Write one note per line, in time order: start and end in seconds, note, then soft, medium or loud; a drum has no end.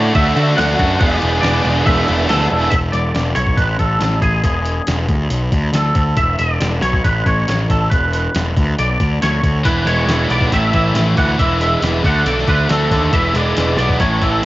0.00 0.11 A2 loud
0.00 0.56 D3 medium
0.00 0.13 A3 medium
0.00 0.36 A3 medium
0.00 0.14 D4 medium
0.00 0.35 D4 medium
0.00 0.15 F#4 medium
0.00 0.34 F#4 medium
0.00 0.13 D5 medium
0.13 0.32 D2 loud
0.13 0.56 D3 medium
0.13 0.57 A3 medium
0.13 0.57 D4 loud
0.13 0.58 F#4 medium
0.13 0.56 E5 medium
0.13 kick loud
0.13 crash medium
0.36 0.53 D3 medium
0.36 0.56 A3 medium
0.36 0.57 D4 medium
0.36 0.58 F#4 medium
0.36 crash medium
0.57 0.75 D2 medium
0.57 0.99 D3 medium
0.57 0.80 A3 medium
0.57 0.79 D4 medium
0.57 0.78 F#4 loud
0.57 0.97 F#5 medium
0.57 snare loud
0.57 crash medium
0.79 0.96 F#2 medium
0.79 1.00 A3 medium
0.79 1.00 D4 medium
0.79 0.99 F#4 medium
0.79 kick medium
0.79 crash medium
0.99 1.18 E1 medium
0.99 1.42 E3 medium
0.99 1.43 G#3 medium
0.99 1.44 B3 loud
0.99 1.21 D4 medium
0.99 1.44 E4 medium
0.99 1.20 G#4 medium
0.99 1.40 D5 medium
0.99 kick loud
0.99 crash medium
1.21 1.39 E1 medium
1.21 1.42 B3 medium
1.21 1.43 D4 medium
1.21 1.43 G#4 medium
1.21 crash medium
1.41 1.60 E1 loud
1.41 2.27 E3 medium
1.41 2.08 G#3 medium
1.41 2.08 B3 medium
1.41 1.63 D4 medium
1.41 1.62 G#4 medium
1.41 1.82 D5 medium
1.41 snare loud
1.41 crash medium
1.45 2.06 E4 medium
1.63 1.82 E1 medium
1.63 1.85 B3 medium
1.63 1.85 D4 medium
1.63 1.86 G#4 medium
1.63 crash soft
1.85 2.03 E1 medium
1.85 2.26 E3 medium
1.85 2.27 B3 medium
1.85 2.28 D4 loud
1.85 2.28 G#4 medium
1.85 2.46 E5 medium
1.85 kick loud
1.85 crash medium
2.07 2.26 E1 medium
2.07 2.28 G#3 soft
2.07 2.29 B3 medium
2.07 2.29 E4 medium
2.07 crash medium
2.29 2.47 D2 medium
2.29 2.71 E3 loud
2.29 2.51 G#3 medium
2.29 2.51 B3 medium
2.29 2.49 D4 medium
2.29 2.49 E4 medium
2.29 2.48 G#4 medium
2.29 2.49 A4 medium
2.29 snare loud
2.29 crash medium
2.49 2.68 E1 medium
2.49 2.72 G#3 medium
2.49 2.71 B3 medium
2.49 2.71 D4 medium
2.49 2.71 E4 medium
2.49 2.70 G#4 medium
2.49 2.73 A4 medium
2.49 crash medium
2.70 2.90 E1 medium
2.70 2.76 E5 medium
2.70 kick medium
2.70 closed hi-hat medium
2.92 3.11 E1 medium
2.92 3.35 D5 medium
2.92 closed hi-hat medium
3.15 3.33 E1 medium
3.15 snare loud
3.15 closed hi-hat medium
3.35 3.54 B1 medium
3.35 3.58 C#5 medium
3.35 closed hi-hat soft
3.47 kick medium
3.57 3.75 A1 medium
3.57 3.79 B4 medium
3.57 kick medium
3.57 closed hi-hat medium
3.79 3.97 A1 medium
3.79 4.20 A4 medium
3.79 kick medium
3.79 closed hi-hat soft
4.00 4.19 A1 medium
4.00 snare medium
4.00 closed hi-hat medium
4.22 4.40 A1 medium
4.22 4.42 G#4 medium
4.22 kick medium
4.22 closed hi-hat soft
4.44 4.80 E1 medium
4.44 5.27 G#4 medium
4.44 kick medium
4.44 closed hi-hat medium
4.65 closed hi-hat soft
4.87 5.06 E1 medium
4.87 snare loud
4.87 closed hi-hat medium
5.08 5.27 D2 medium
5.08 kick medium
5.08 closed hi-hat soft
5.30 5.48 B1 medium
5.30 closed hi-hat medium
5.52 5.70 D2 medium
5.52 kick medium
5.52 closed hi-hat medium
5.73 5.91 D2 medium
5.73 6.19 A4 medium
5.73 snare medium
5.73 closed hi-hat medium
5.95 6.13 D2 medium
5.95 kick medium
5.95 closed hi-hat medium
6.17 6.35 E1 medium
6.17 6.39 E5 medium
6.17 kick loud
6.17 closed hi-hat medium
6.39 6.57 E1 medium
6.39 6.82 D5 medium
6.39 closed hi-hat medium
6.61 6.79 E1 medium
6.61 snare loud
6.61 closed hi-hat medium
6.82 7.00 B1 medium
6.82 7.05 C#5 medium
6.82 closed hi-hat soft
6.93 kick medium
7.04 7.22 A1 medium
7.04 7.26 B4 medium
7.04 kick medium
7.04 closed hi-hat medium
7.26 7.44 A1 medium
7.26 7.71 C#5 medium
7.26 kick medium
7.26 closed hi-hat soft
7.48 7.66 A1 medium
7.48 snare loud
7.48 closed hi-hat medium
7.70 7.88 A1 medium
7.70 7.90 A4 medium
7.70 kick medium
7.70 closed hi-hat medium
7.90 8.27 E1 medium
7.90 8.73 B4 medium
7.90 kick loud
7.90 closed hi-hat medium
8.13 closed hi-hat soft
8.35 8.53 E1 medium
8.35 snare loud
8.35 closed hi-hat medium
8.57 8.74 D2 medium
8.57 kick medium
8.57 closed hi-hat soft
8.79 8.96 B1 medium
8.79 9.19 D5 medium
8.79 closed hi-hat medium
9.00 9.18 D2 medium
9.00 kick medium
9.00 closed hi-hat soft
9.22 9.40 D2 medium
9.22 9.67 C#5 medium
9.22 snare loud
9.22 closed hi-hat medium
9.43 9.61 D2 medium
9.43 kick medium
9.43 closed hi-hat medium
9.64 9.83 E1 medium
9.64 10.06 E3 medium
9.64 9.87 G#3 medium
9.64 9.86 B3 medium
9.64 9.85 E4 medium
9.64 9.87 B4 medium
9.64 kick loud
9.64 closed hi-hat medium
9.86 10.04 E1 medium
9.86 10.07 G#3 soft
9.86 10.08 B3 medium
9.86 10.09 E4 medium
9.86 10.27 C#5 medium
9.86 closed hi-hat medium
10.07 10.26 E1 medium
10.07 10.30 E3 medium
10.07 10.30 G#3 medium
10.07 10.29 B3 medium
10.07 10.28 E4 medium
10.07 snare loud
10.07 closed hi-hat medium
10.29 10.48 B1 medium
10.29 10.51 E3 medium
10.29 10.51 G#3 medium
10.29 10.51 B3 medium
10.29 10.50 E4 medium
10.29 10.53 D5 medium
10.29 closed hi-hat medium
10.41 kick medium
10.51 10.70 A1 medium
10.51 10.93 A2 medium
10.51 10.93 E3 medium
10.51 10.73 A3 medium
10.51 10.72 C#4 medium
10.51 10.71 E4 medium
10.51 10.73 E5 medium
10.51 kick medium
10.51 closed hi-hat medium
10.72 10.92 A1 medium
10.72 11.15 E3 medium
10.72 10.94 A3 medium
10.72 10.94 C#4 medium
10.72 10.95 E4 medium
10.72 11.15 E5 medium
10.72 kick medium
10.72 closed hi-hat soft
10.94 11.13 A1 medium
10.94 11.37 A2 medium
10.94 11.37 E3 medium
10.94 11.17 A3 medium
10.94 11.16 C#4 medium
10.94 11.16 E4 medium
10.94 snare loud
10.94 closed hi-hat medium
11.16 11.35 D2 medium
11.16 11.37 E3 medium
11.16 11.38 A3 soft
11.16 11.38 C#4 medium
11.16 11.38 E4 medium
11.16 11.39 F#5 medium
11.16 kick medium
11.16 closed hi-hat medium
11.38 11.75 E1 medium
11.38 11.81 E3 medium
11.38 11.61 G#3 medium
11.38 11.60 B3 medium
11.38 11.59 E4 medium
11.38 11.60 E5 loud
11.38 kick loud
11.38 closed hi-hat medium
11.61 11.82 G#3 medium
11.61 11.82 B3 medium
11.61 11.83 E4 medium
11.61 12.02 E5 medium
11.61 closed hi-hat soft
11.82 12.00 E1 medium
11.82 12.03 E3 medium
11.82 12.03 G#3 medium
11.82 12.03 B3 medium
11.82 12.03 E4 medium
11.82 snare loud
11.82 closed hi-hat medium
12.04 12.22 D2 medium
12.04 12.24 D3 medium
12.04 12.24 A3 medium
12.04 12.25 D4 medium
12.04 12.26 F#4 medium
12.04 12.25 F#5 medium
12.04 kick medium
12.04 closed hi-hat soft
12.25 12.44 B1 medium
12.25 12.67 D3 medium
12.25 12.48 A3 medium
12.25 12.47 D4 medium
12.25 12.46 F#4 medium
12.25 12.49 D5 medium
12.25 closed hi-hat medium
12.38 snare soft
12.47 12.66 D2 medium
12.47 12.90 D3 medium
12.47 12.68 A3 medium
12.47 12.69 D4 medium
12.47 12.69 F#4 medium
12.47 12.69 B4 medium
12.47 kick medium
12.47 closed hi-hat soft
12.68 12.88 D2 medium
12.68 13.11 D3 medium
12.68 12.91 A3 medium
12.68 12.90 D4 medium
12.68 12.89 F#4 medium
12.68 13.14 A4 medium
12.68 snare loud
12.68 closed hi-hat medium
12.91 13.09 D#2 medium
12.91 13.13 D3 medium
12.91 13.13 A3 soft
12.91 13.12 D4 medium
12.91 13.12 F#4 medium
12.91 kick medium
12.91 closed hi-hat medium
13.12 13.31 E1 medium
13.12 13.55 E3 medium
13.12 13.36 G#3 medium
13.12 13.35 B3 loud
13.12 13.34 E4 medium
13.12 13.36 E5 medium
13.12 kick medium
13.12 closed hi-hat medium
13.34 13.52 E1 medium
13.34 13.56 G#3 medium
13.34 13.57 B3 medium
13.34 13.57 E4 medium
13.34 13.77 D5 medium
13.34 closed hi-hat medium
13.56 13.75 E1 medium
13.56 13.79 E3 medium
13.56 13.79 G#3 medium
13.56 13.79 B3 medium
13.56 13.77 E4 medium
13.56 snare loud
13.56 closed hi-hat medium
13.78 13.96 B1 medium
13.78 13.99 E3 medium
13.78 14.00 G#3 medium
13.78 14.00 B3 medium
13.78 13.99 E4 medium
13.78 14.00 D5 medium
13.78 closed hi-hat medium
13.89 kick medium
14.00 14.18 A1 medium
14.00 14.41 A2 medium
14.00 14.42 E3 medium
14.00 14.22 A3 medium
14.00 14.21 C#4 medium
14.00 14.20 E4 medium
14.00 14.23 C#5 medium
14.00 kick medium
14.00 closed hi-hat medium
14.21 14.40 A1 medium
14.21 14.45 E3 medium
14.21 14.43 A3 soft
14.21 14.43 C#4 medium
14.21 14.44 E4 medium
14.21 14.43 A4 medium
14.21 kick medium
14.21 closed hi-hat soft